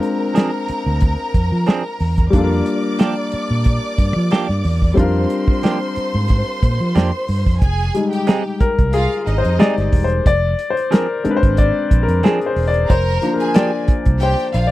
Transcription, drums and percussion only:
0.03 closed hi-hat
0.36 snare, closed hi-hat
0.68 closed hi-hat
1.01 kick, closed hi-hat
1.34 kick, closed hi-hat
1.66 snare, closed hi-hat
2.00 open hi-hat
2.18 kick, closed hi-hat
2.33 kick, closed hi-hat
2.66 closed hi-hat
2.99 snare, closed hi-hat
3.32 closed hi-hat
3.64 kick, closed hi-hat
3.98 kick, closed hi-hat
4.31 snare, closed hi-hat
4.50 snare
4.64 open hi-hat
4.82 kick
4.97 kick, closed hi-hat
5.30 closed hi-hat
5.48 kick
5.63 snare, closed hi-hat
5.96 closed hi-hat
6.28 kick, closed hi-hat
6.63 kick, closed hi-hat
6.95 snare, closed hi-hat
7.28 open hi-hat
7.46 kick
7.62 kick, closed hi-hat
7.80 closed hi-hat
7.95 closed hi-hat
8.13 closed hi-hat
8.27 snare, closed hi-hat
8.60 kick, closed hi-hat
8.79 kick, closed hi-hat
8.93 closed hi-hat
9.12 closed hi-hat
9.27 closed hi-hat
9.45 closed hi-hat
9.59 snare, closed hi-hat
9.78 snare, closed hi-hat
9.92 kick, open hi-hat
10.10 closed hi-hat
10.26 kick, closed hi-hat
10.59 closed hi-hat
10.77 closed hi-hat
10.92 snare, closed hi-hat
11.25 closed hi-hat
11.43 kick, closed hi-hat
11.57 kick, closed hi-hat
11.91 kick, closed hi-hat
12.09 closed hi-hat
12.23 snare, closed hi-hat
12.41 closed hi-hat
12.56 open hi-hat
12.74 closed hi-hat
12.90 kick, closed hi-hat
13.08 closed hi-hat
13.22 closed hi-hat
13.40 closed hi-hat
13.54 snare, clap, closed hi-hat
13.88 kick, closed hi-hat
14.06 kick, closed hi-hat
14.20 closed hi-hat
14.39 closed hi-hat
14.54 closed hi-hat

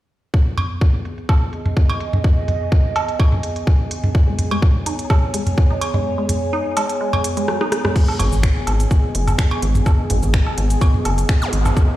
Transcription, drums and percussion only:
0.34 kick
0.58 closed hi-hat, mid tom, cowbell
0.81 kick
1.05 closed hi-hat
1.18 closed hi-hat
1.29 kick, low woodblock
1.53 closed hi-hat
1.66 closed hi-hat, mid tom
1.77 kick
1.90 cowbell
2.00 closed hi-hat
2.13 mid tom
2.24 kick
2.48 closed hi-hat, mid tom
2.72 kick
2.96 closed hi-hat, low woodblock
3.08 closed hi-hat
3.20 kick, cowbell
3.32 mid tom
3.43 closed hi-hat
3.56 closed hi-hat
3.67 kick
3.91 closed hi-hat
4.04 mid tom
4.15 kick
4.39 closed hi-hat, mid tom
4.51 cowbell
4.62 kick
4.86 closed hi-hat
4.99 closed hi-hat
5.10 kick, low woodblock
5.34 closed hi-hat
5.47 closed hi-hat, mid tom
5.58 kick
5.81 closed hi-hat, cowbell
5.94 mid tom
6.29 closed hi-hat, mid tom
6.77 closed hi-hat, low woodblock
6.89 closed hi-hat
7.13 mid tom, cowbell
7.24 closed hi-hat
7.37 closed hi-hat
7.48 cross-stick
7.61 cross-stick
7.72 cross-stick, closed hi-hat
7.85 cross-stick, mid tom
7.96 kick, crash, cabasa
8.08 low woodblock
8.19 closed hi-hat, mid tom, cowbell
8.32 cabasa
8.43 finger snap, kick, cabasa
8.67 closed hi-hat, low woodblock
8.80 closed hi-hat, cabasa
8.91 kick, cabasa
9.15 closed hi-hat
9.28 closed hi-hat, mid tom, cabasa, low woodblock
9.38 finger snap, kick, cabasa
9.51 cowbell
9.62 closed hi-hat
9.75 mid tom, cabasa
9.86 kick, cabasa, low woodblock
10.10 closed hi-hat, mid tom
10.23 cabasa
10.34 finger snap, kick, cabasa
10.47 low woodblock
10.58 closed hi-hat
10.70 closed hi-hat, cabasa
10.81 kick, cowbell, cabasa
10.94 mid tom
11.05 closed hi-hat, low woodblock
11.18 closed hi-hat, cabasa
11.29 finger snap, kick, cabasa
11.53 closed hi-hat
11.66 mid tom, cabasa, low woodblock
11.77 kick, cabasa

